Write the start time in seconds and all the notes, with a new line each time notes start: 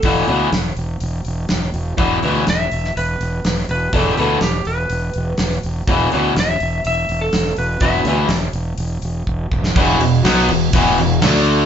Already playing: A4
0.03 E1 E2 B2 E3, kick, open hi-hat
0.27 D2 E2 B2 E3, open hi-hat
0.52 E1, snare, open hi-hat
0.77 E1, open hi-hat
1.00 E1, open hi-hat
1.25 E1, open hi-hat
1.49 E1, snare, open hi-hat
1.62 snare
1.74 E1, open hi-hat
1.98 E1 E2 B2 E3, kick, open hi-hat
2.22 D2 E2 B2 E3, open hi-hat
2.47 E1 E5, snare, open hi-hat
2.72 E1, open hi-hat
2.85 snare
2.97 E1 B4, open hi-hat
3.21 E1, open hi-hat
3.45 E1, snare, open hi-hat
3.58 snare
3.69 E1 B4, open hi-hat
3.93 E1 E2 B2 E3 A4, kick, open hi-hat
4.12 G4
4.17 D2 E2 B2 E3 A4, open hi-hat
4.41 E1 G4, snare, open hi-hat
4.65 E1 B4, open hi-hat
4.90 E1, open hi-hat
5.14 E1, open hi-hat
5.38 E1, snare, open hi-hat
5.51 snare
5.63 E1, open hi-hat
5.87 E1 E2 B2 E3, kick, open hi-hat
6.12 D2 E2 B2 E3, open hi-hat
6.36 E1 E5, snare, open hi-hat
6.60 E1, open hi-hat
6.85 E1 E5, open hi-hat
7.09 E1, open hi-hat
7.21 A4
7.33 E1, snare, open hi-hat
7.45 snare
7.57 E1 B4, open hi-hat
7.80 E1 E2 B2 E3 E5, kick, open hi-hat
8.04 D2 E2 B2, open hi-hat
8.08 E3
8.29 E1 D5, snare, open hi-hat
8.53 E1, open hi-hat
8.78 E1, open hi-hat
9.02 E1, open hi-hat
9.27 E1, kick
9.51 E1, kick
9.64 snare
9.76 E1 E2 B2 E3, kick, crash
9.99 E1 E2 B2, crash
10.24 B1 B2 F#3 B3, snare, crash
10.49 E1 E2 B2, crash
10.73 E1 E2 B2 E3, kick, crash
10.98 E1 E2 B2, crash
11.21 D2 D3 A3 D4, snare, crash
11.46 crash